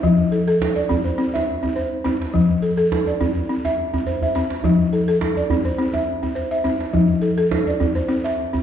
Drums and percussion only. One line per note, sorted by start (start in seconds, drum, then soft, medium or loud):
0.04 djembe bass medium
0.62 djembe slap medium
0.62 djembe tone medium
0.91 djembe bass medium
1.06 djembe slap soft
1.35 djembe slap medium
1.35 djembe tone medium
1.48 djembe slap soft
1.64 djembe bass soft
2.06 djembe tone medium
2.22 djembe slap soft
2.35 djembe slap soft
2.35 djembe bass medium
2.64 djembe slap soft
2.92 djembe slap medium
2.92 djembe tone medium
3.21 djembe bass medium
3.65 djembe slap soft
3.65 djembe tone medium
3.94 djembe bass medium
4.07 djembe bass soft
4.22 djembe bass soft
4.35 djembe slap medium
4.50 djembe slap medium
4.64 djembe bass medium
5.21 djembe slap medium
5.21 djembe tone medium
5.50 djembe bass medium
5.65 djembe slap soft
5.94 djembe slap soft
5.94 djembe tone soft
6.07 djembe slap soft
6.23 djembe bass soft
6.65 djembe tone medium
6.80 djembe slap soft
6.94 djembe bass medium
7.51 djembe slap medium
7.51 djembe tone medium
7.81 djembe bass medium
7.97 djembe slap soft
8.25 djembe slap medium
8.54 djembe bass medium